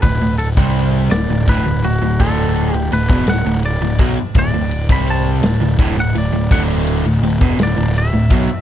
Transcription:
0.02 D1 D2 A2 B4, kick, ride
0.20 D1 D2 A2
0.38 A4, ride
0.57 C2 C3 G3 C4, kick
0.75 ride
1.10 D1 D2 A2 D5, snare, ride
1.28 D1 D2 A2
1.48 D1 D2 A2 B4, kick, ride
1.64 D1 D2 A2
1.83 D1 D2 A2 F#4, ride
2.01 D1 D2 A2
2.20 D1 D2 A2 D3 A4, kick, ride
2.56 ride
2.73 D1 D2 A2 G4
2.91 D1 D2 A2 B4, ride
3.09 E1 E2 B2, kick
3.26 D1 D2 A2 F#5, snare, ride
3.45 D1 D2 A2
3.63 D5, ride
3.80 D1 D2 A2
3.98 B1 B2 F#3, kick, ride
4.34 D1 D2 A2, kick, ride
4.39 D5
4.52 D1 D2 A2
4.71 ride
4.89 C2 C3 G3 C4 B5, kick
5.07 A5, ride
5.42 D1 D2 A2, snare, ride
5.59 D1 D2 A2
5.79 D1 D2 A2, kick, ride
5.95 D1 D2 A2
6.00 F#5
6.13 D1 D2 A2, ride
6.18 D5
6.31 D1 D2 A2
6.51 D1 D2 A2 D3 F#5, kick, crash
6.87 ride
7.04 D1 D2 A2
7.21 D1 D2 A2, ride
7.40 E1 E2 B2, kick
7.58 D1 D2 A2, snare, ride
7.63 D5
7.76 D1 D2 A2
7.95 E5, ride
8.13 D1 D2 A2
8.30 B1 B2 F#3, kick, ride

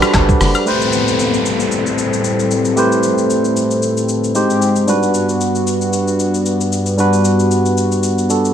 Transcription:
Already playing: G3 D4 F#4 A4 B4 C5 D5
0.02 cross-stick, high agogo, shaker
0.14 G1, kick, clap, low woodblock, shaker
0.29 kick, shaker
0.40 F#1, cross-stick, open hi-hat, shaker
0.55 high agogo, shaker
0.66 A2 G3 A3 C4 G4 A4 B4 C5, downlifter, shaker
0.81 shaker
0.93 shaker
1.08 shaker
1.19 shaker
1.34 shaker
1.46 shaker
1.60 shaker
1.72 shaker
1.86 shaker
1.98 shaker
2.13 shaker
2.24 shaker
2.39 shaker
2.51 shaker
2.65 shaker
2.76 A3 G4 B4 C5, shaker
2.92 shaker
3.03 shaker
3.18 shaker
3.30 shaker
3.45 shaker
3.57 shaker
3.71 shaker
3.82 shaker
3.97 shaker
4.09 shaker
4.24 shaker
4.35 G#2 G#3 C4 D#4 G4 C5, shaker
4.50 shaker
4.62 shaker
4.76 shaker
4.87 G2 G3 B3 D4 F#4 B4, shaker
5.03 shaker
5.14 shaker
5.29 shaker
5.41 shaker
5.55 shaker
5.67 shaker
5.81 shaker
5.93 shaker
6.08 shaker
6.20 shaker
6.34 shaker
6.46 shaker
6.61 shaker
6.72 shaker
6.86 shaker
6.97 G3 D4 F#4 B4, shaker
7.13 shaker
7.25 shaker
7.39 shaker
7.51 shaker
7.66 shaker
7.77 shaker
7.92 shaker
8.03 shaker
8.18 shaker
8.29 G3 D4 F#4 A4, shaker
8.45 shaker

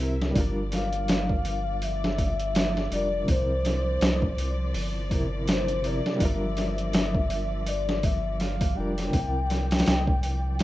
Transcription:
Already playing: C2 C3 F3 A#4 E5
0.00 C4 E4 A#4
0.22 snare
0.31 G3 D4 D5
0.35 G1 F3 F4, kick, open hi-hat
0.40 A#4
0.72 F5, snare, open hi-hat
0.93 closed hi-hat
1.08 snare, open hi-hat
1.29 kick
1.45 open hi-hat
1.82 E5, open hi-hat
2.04 snare
2.18 kick, open hi-hat
2.40 closed hi-hat
2.55 snare, open hi-hat
2.77 snare
2.90 F1 G3 D4 F4 D5, open hi-hat
2.95 A#4
3.24 C3 C4, kick, open hi-hat
3.28 C2 E4 C5
3.34 A#4
3.65 snare, open hi-hat
4.01 C2, snare, open hi-hat
4.22 kick
4.38 open hi-hat
4.74 G1, open hi-hat
5.09 C3 C4 E4, kick, open hi-hat
5.14 A#4
5.47 C5, snare, open hi-hat
5.68 closed hi-hat
5.82 C3 C4 E4, open hi-hat
5.86 A#4 D5
6.06 snare
6.16 G3 D4
6.20 G1 F4 E5, kick, open hi-hat
6.25 A#4
6.57 snare, open hi-hat
6.78 closed hi-hat
6.93 E5, snare, open hi-hat
7.14 kick
7.30 open hi-hat
7.66 D5, open hi-hat
7.89 snare
8.03 E5, kick, open hi-hat
8.40 F5, snare, open hi-hat
8.61 kick, open hi-hat
8.75 F1 G3 D4 F4 G5
8.80 A#4
8.98 snare, open hi-hat
9.10 C3 C4, kick, open hi-hat
9.14 C2 E4
9.19 A#4
9.50 snare, open hi-hat
9.71 snare, open hi-hat
9.79 snare, open hi-hat
9.86 C2, snare, open hi-hat
10.07 kick
10.23 open hi-hat
10.59 open hi-hat

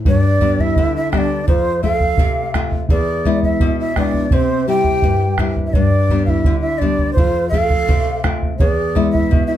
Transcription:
0.05 G2 D4 D5, bombo low
0.40 G3 B3 D4, bombo low
0.59 E4 E5, bombo low
0.76 D3, bombo low
0.96 E4 E5
1.12 G3 B3 D4 E5, bombo rim, bombo low
1.18 D5
1.48 F2 F4 C5, bombo low
1.83 A3 C4 F4 A4 F5, bombo low
2.00 bombo low
2.17 C3, bombo low
2.54 A3 C4 F4, bombo rim, bombo low
2.72 bombo low
2.89 E2 G#4 D5, bombo low
3.25 G#3 B3 E4, bombo low
3.42 E4 E5, bombo low
3.60 B2, bombo low
3.79 E4 E5
3.96 G#3 B3 D4 E4 D5, bombo rim, bombo low
4.14 bombo low
4.31 C3 C4 C5, bombo low
4.67 G3 C4 E4 G4 G5
4.84 bombo low
5.02 G2, bombo low
5.38 G3 C4 E4, bombo rim, bombo low
5.56 bombo low
5.67 E4 E5
5.73 G2 D4 D5, bombo low
6.09 G3 B3 D4, bombo low
6.26 E4 E5 F5, bombo low
6.44 D3, bombo low
6.60 E4 E5
6.78 G3 B3 D4 D5, bombo low
6.82 D4
6.99 bombo low
7.13 F4 C5, bombo low
7.18 F2
7.49 A3 C4 A4 F5, bombo low
7.54 F4
7.70 bombo low
7.89 C3, bombo low
8.24 A3 C4 F4, bombo rim, bombo low
8.42 bombo low
8.59 E2 G#4 D5, bombo low
8.95 G#3 B3 E4, bombo low
9.11 E4 E5, bombo low
9.31 B2, bombo low
9.47 E4 E5

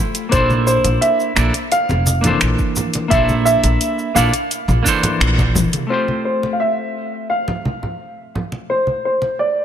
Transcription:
Already playing: A3 E4 F4 G4 C5
0.15 closed hi-hat, cabasa
0.29 A#1 A#3 D4 E4 C5, kick, closed hi-hat, cabasa
0.34 A4 C5
0.50 high conga, cabasa
0.67 C5, cabasa
0.84 A#1, closed hi-hat, muted conga, cabasa
1.01 E5, closed hi-hat, cabasa
1.20 cabasa
1.36 A#1 A#3 D4 E4 A4 D5, finger snap, cabasa
1.54 closed hi-hat, cabasa
1.72 F5, closed hi-hat, cabasa
1.89 F1, muted conga, low conga, cabasa
2.06 high conga, cabasa
2.21 E3 A#3 D4, closed hi-hat, low conga, cabasa
2.26 A4 C5
2.41 A#1, finger snap, closed hi-hat, cabasa
2.59 kick, cabasa
2.76 low conga, cabasa
2.94 closed hi-hat, muted conga, cabasa
3.08 A#1 A#3 D4 E4 E5, kick, closed hi-hat, cabasa
3.13 A4 C5
3.29 high conga, cabasa
3.45 E5, cabasa
3.63 A#1, closed hi-hat, muted conga, cabasa
3.81 closed hi-hat, cabasa
3.99 cabasa
4.15 A#1 A#3 D4 E4 A4 D5 F5, cabasa
4.33 closed hi-hat, cabasa
4.51 closed hi-hat, cabasa
4.68 A#1, muted conga, low conga, cabasa
4.83 E3 A#3 D4, kick, cabasa
4.88 A4 C5
5.03 closed hi-hat, low conga, cabasa
5.20 A#1, finger snap, closed hi-hat, cabasa
5.38 kick, muted conga, cabasa
5.55 kick, high tom, low conga, cabasa
5.73 closed hi-hat, mid tom, cabasa
5.87 A3 C4 F4 C5
5.92 G4 C5
6.08 high conga
6.25 C5
6.43 muted conga
6.53 F5
6.60 E5
7.30 F5
7.48 muted conga, low conga
7.65 high conga
7.83 low conga
8.35 low conga
8.52 muted conga
8.70 C5
8.87 high conga
9.05 C5
9.22 muted conga
9.39 D5

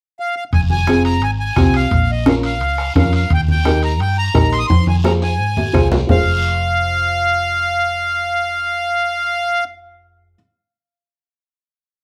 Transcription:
0.20 F5
0.36 F5
0.53 F1 G#5, bombo low, high conga, high timbale, long guiro
0.70 G#5, high conga
0.87 C4 F4 G#4, bombo rim, high conga, high timbale, short guiro
1.05 A#5, high timbale, short guiro
1.22 G#1 G#5, high conga, high timbale, long guiro
1.40 G#5
1.56 C2 C4 F4 G4, bombo low, bombo rim, high conga, high timbale, low timbale, short guiro
1.74 F5, high timbale, short guiro
1.91 A#1, bombo low, high conga, high timbale, long guiro
2.11 D#5
2.26 C#4 F4 A#4 F5, bombo rim, high conga, high timbale, short guiro
2.43 F5, high timbale, short guiro
2.61 C#2, high conga, high timbale, long guiro
2.78 bombo rim
2.95 F2 C#4 F4 A#4 F5, bombo low, bombo rim, high conga, high timbale, low timbale, short guiro
3.13 F5, high timbale, short guiro
3.30 D#2 G5, bombo low, high conga, high timbale, long guiro
3.48 G5, high conga
3.65 D#4 G4 A#4, bombo rim, high conga, high timbale, short guiro
3.82 A#5, high timbale, short guiro
4.00 G2 G5, high conga, high timbale, long guiro
4.18 A#5
4.34 A#1 D#4 G4 A#4, bombo low, bombo rim, high conga, high timbale, low timbale, short guiro
4.53 C6, high timbale, short guiro
4.59 D#6
4.67 F2 C6, bombo low, high timbale, long guiro
4.87 G#5, high conga, high timbale
5.04 F4 G#4 C5 A#5, bombo rim, high conga, low timbale, short guiro
5.22 G#5, high timbale, short guiro
5.39 G#2, high conga, long guiro
5.57 high conga, low timbale
5.73 C2 F4 G#4 C5, bombo low, bombo rim, high conga, low timbale, short guiro
5.91 low conga, low timbale, short guiro
6.07 F1 F4 G#4 C5 F5, bombo low, low conga, low timbale, long guiro

